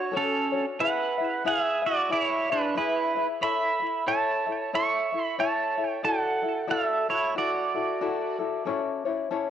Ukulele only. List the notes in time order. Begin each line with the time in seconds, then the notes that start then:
Already playing: D4 F#4 C#5
0.12 F#4 A4 C#5
0.52 D4 F#4 C#5
0.79 E4 G#4 B4 E5
1.18 E4 G#4 E5
1.44 E4 G#4 B4 E5
1.82 E4 G#4 E5
2.09 E4 G#4 B4 E5
2.50 E4 G#4 E5
2.75 E4 G#4 B4 E5
3.15 E4 G#4 E5
3.41 E4 A4 C#5 E5
3.80 E4 A4 E5
4.07 E4 A4 C#5 E5
4.46 E4 A4 E5
4.73 E4 A4 C#5 E5
5.12 E4 A4 E5
5.38 E4 A4 C#5 E5
5.78 E4 A4 E5
6.03 E4 F#4 A4 D5
6.42 E4 F#4 A4
6.67 E4 F#4 A4 D5
7.09 E4 F#4 A4
7.35 E4 F#4 A4 D5
7.74 E4 F#4 A4
8.01 E4 F#4 A4 D5
8.39 E4 F#4 A4
8.65 C#4 E4 A4 C#5
9.05 C#4 E4 C#5
9.31 C#4 E4 A4 C#5